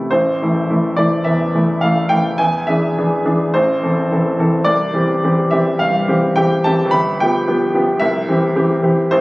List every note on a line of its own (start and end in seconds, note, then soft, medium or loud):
0.00 0.12 E2 soft
0.00 0.12 C3 soft
0.00 0.12 A3 soft
0.00 0.12 E4 soft
0.11 0.40 A1 soft
0.11 0.97 C5 medium
0.42 0.67 E3 soft
0.42 0.67 A3 soft
0.42 0.67 E4 soft
0.70 0.95 E3 soft
0.70 0.95 A3 soft
0.70 0.95 E4 soft
0.96 1.22 E3 soft
0.96 1.23 A3 soft
0.96 1.23 E4 soft
0.96 1.25 D5 medium
1.24 1.53 E2 soft
1.24 1.81 E5 medium
1.55 1.80 E3 soft
1.55 1.80 A3 soft
1.55 1.80 E4 soft
1.81 2.08 E3 soft
1.81 2.09 A3 soft
1.81 2.08 E4 soft
1.81 2.10 F5 medium
2.09 2.37 E3 soft
2.09 2.37 A3 soft
2.09 2.37 E4 soft
2.09 2.39 G5 medium
2.38 2.68 E2 soft
2.38 2.68 G#5 medium
2.67 2.94 E3 soft
2.67 2.94 D4 soft
2.67 2.95 G#4 soft
2.67 3.53 E5 medium
2.98 3.23 E3 soft
2.98 3.23 D4 soft
2.98 3.23 G#4 soft
3.25 3.51 E3 soft
3.25 3.51 D4 soft
3.25 3.51 G#4 soft
3.54 3.82 A1 medium
3.54 4.39 C5 medium
3.83 4.09 E3 soft
3.83 4.09 C4 soft
3.83 4.09 A4 soft
4.11 4.36 E3 soft
4.11 4.37 C4 soft
4.11 4.37 A4 soft
4.39 4.64 E3 soft
4.39 4.64 C4 soft
4.39 4.65 A4 soft
4.65 4.94 C2 medium
4.65 5.50 D5 medium
4.94 5.20 E3 soft
4.94 5.20 C4 soft
4.94 5.20 G4 soft
5.23 5.49 E3 soft
5.23 5.49 C4 soft
5.23 5.49 G4 soft
5.51 5.77 E3 soft
5.51 5.77 C4 soft
5.51 5.78 G4 soft
5.51 5.79 E5 medium
5.79 6.07 G2 soft
5.79 6.36 F5 medium
6.08 6.34 E3 soft
6.08 6.34 C4 soft
6.08 6.34 G4 soft
6.36 6.62 E3 soft
6.36 6.63 C4 soft
6.36 6.63 G4 soft
6.36 6.64 G5 medium
6.64 6.90 E3 soft
6.64 6.91 C4 soft
6.64 6.91 G4 soft
6.64 6.92 A5 medium
6.86 7.15 G1 medium
6.91 7.19 B5 medium
7.20 7.45 F3 soft
7.20 7.46 B3 soft
7.20 7.46 G4 soft
7.20 8.02 G5 medium
7.48 7.72 F3 soft
7.48 7.72 B3 soft
7.48 7.72 G4 soft
7.74 7.99 F3 soft
7.74 8.00 B3 soft
7.74 7.99 G4 soft
8.00 8.28 C2 medium
8.00 8.82 E5 medium
8.28 8.53 E3 soft
8.28 8.53 C4 soft
8.28 8.54 G4 soft
8.56 8.80 E3 soft
8.56 8.80 C4 soft
8.56 8.81 G4 soft
8.83 9.07 E3 soft
8.83 9.08 C4 soft
8.83 9.08 G4 soft
9.11 9.21 A1 medium
9.11 9.21 C5 medium